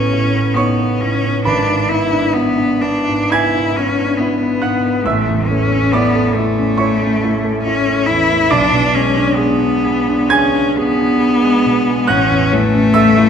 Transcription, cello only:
Already playing: C#4
0.55 B3
1.01 C#4
1.44 D4
1.89 E4
2.33 B3
2.82 D4
3.30 E4
3.76 C#4
4.17 B3
5.03 A3
5.46 C#4
5.91 B3
6.34 A3
7.62 C#4
8.06 E4
8.51 D4
8.95 C#4
9.35 B3
10.29 C#4
10.77 B3
12.09 C#4
12.53 A3

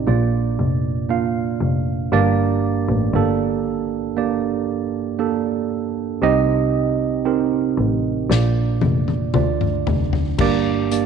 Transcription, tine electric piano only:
Already playing: D#4 G4 D#5
0.07 A#2 A#3 D4 F4 D5
1.09 A#3 D4 F4 F5
2.12 G2 A#3 D4 G4 D5
3.15 A#3 D4 G4 A4
4.17 A#3 D4 G4 D5
5.19 A#3 D4 G4 A4
6.22 C3 C4 D#4 G4 D#5
7.25 C4 D#4 G4 A#4
8.30 A#2 A#3 D4 F4 D5
9.35 D3 A3 D4 F4 D5
10.40 G2 A#3 D4 G4 D5
10.92 A#3 D4 G4 D5

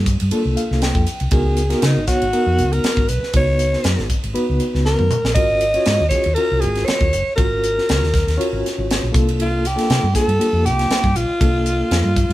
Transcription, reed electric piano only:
0.31 A#3 D4 F4 A4
0.57 F5
0.82 G5
1.31 B3 D#4 F#4 A#4
1.70 B3 D#4 F#4 A#4
2.08 B3 D#4 F#4 C#5
2.33 B3 D#4 F#4 A#4
3.34 B3 D#4 F#4 B4
4.34 B3 D#4 F#4 B4
5.36 C#4 F4 F#4 A#4
5.74 C#4 F4 F#4 C#5
6.11 C#4 F4 F#4 G#4
6.37 C#4 F4 F#4 A#4
7.36 C#4 F4 F#4 A#4
8.37 C#4 F4 F#4 C#5
9.12 A#3 D4 F4 A4
9.76 A#3 D4 F4 A4
10.13 A#3 D4 F4 A4
10.39 A#3 D4 F4 G4
11.40 A#3 D4 F4 A4

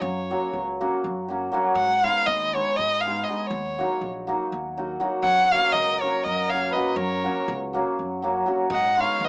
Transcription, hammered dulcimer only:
Already playing: F#3
0.30 F#3 A#3 C#4 F#4
0.81 F#3 A#3 C#4 F#4
1.28 F#3 A#3 C#4 F#4
1.52 F#3 A#3 C#4 F#4
2.03 G#3 B3 D#4 G#4
2.53 G#3 B3 D#4 G#4
3.05 G#3 B3 D#4 G#4
3.28 G#3 B3 D#4 G#4
3.78 F#3 A#3 D#4 F#4
4.27 F#3 A#3 D#4 F#4
4.77 F#3 A#3 D#4 F#4
5.00 F#3 A#3 D#4 F#4
5.52 F#3 A#3 C#4 F#4
6.01 F#3 A#3 C#4 F#4
6.52 F#3 A#3 C#4 F#4
6.74 F#3 A#3 C#4 F#4
7.24 F#3 A#3 C#4 F#4
7.73 F#3 A#3 C#4 F#4
8.22 F#3 A#3 C#4 F#4
8.46 F#3 A#3 C#4 F#4
8.97 G#3 B3 D#4 G#4

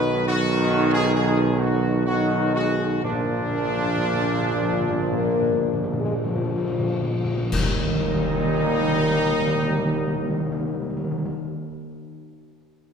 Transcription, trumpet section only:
Already playing: B4
0.27 F#4
0.93 G#4
1.14 G#4
1.59 F#4
2.06 F#4
2.54 F#4
3.03 D4
7.52 D#4

